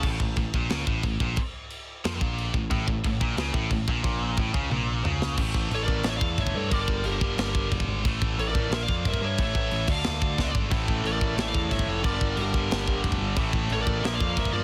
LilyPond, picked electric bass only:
\new Staff \with { instrumentName = "Picked electric bass" } { \clef bass \time 4/4 \tempo 4 = 180 a,,8 a,,8 a,,8 bes,,8 cis,8 a,,8 a,,8 bes,,8 | r2 f,8 bes,,4 a,,8 | a,,8 a,,8 a,,8 bes,,8 cis,8 a,,8 a,,8 bes,,8 | bes,,4 a,,8 cis,8 bes,,4 cis,4 |
a,,8 a,,8 a,,8 a,,8 a,,8 e,8 g,,8 g,8 | g,,8 g,,8 g,,8 g,,8 g,,8 g,,8 f,,8 gis,,8 | a,,8 a,,8 a,,8 a,,8 bes,,8 f,8 g,,8 g,8 | a,,8 a,,8 a,,8 d,8 d,8 d,8 cis,8 gis,,8 |
a,,8 a,,8 a,,8 a,,8 a,,8 e,8 g,,8 f,,8 | g,,8 g,,8 g,,8 g,,8 g,,8 g,,8 f,,8 g,,8 | a,,8 a,,8 a,,8 a,,8 bes,,8 f,8 g,,8 g,,8 | }